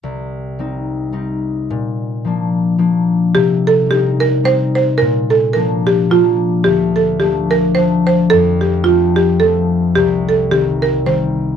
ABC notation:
X:1
M:3/4
L:1/8
Q:"Swing" 1/4=109
K:Cdor
V:1 name="Marimba"
z6 | z6 | G A G B c c | B A B G F2 |
G A G B c c | A G F G A2 | G A G B c z |]
V:2 name="Harp"
C,,2 [G,CE]2 [G,CE]2 | B,,2 [F,B,D]2 [F,B,D]2 | C,2 [G,CE]2 [G,CE]2 | B,,2 [F,B,D]2 [F,B,D]2 |
D,,2 [F,A,D]2 [F,A,D]2 | F,,2 [F,A,C]2 [F,A,C]2 | C,,2 [E,G,C]2 [E,G,C]2 |]